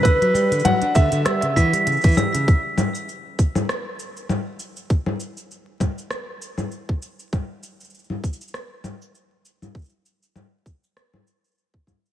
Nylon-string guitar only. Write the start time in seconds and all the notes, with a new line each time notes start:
0.05 D3
0.21 F#3
0.34 G3
0.52 D3
0.65 F#3
0.82 D4
0.95 D3
1.12 D3
1.26 G3
1.42 C#3
1.56 E3
1.73 G3
1.87 C#3
2.04 E3
2.17 G3
2.34 C#3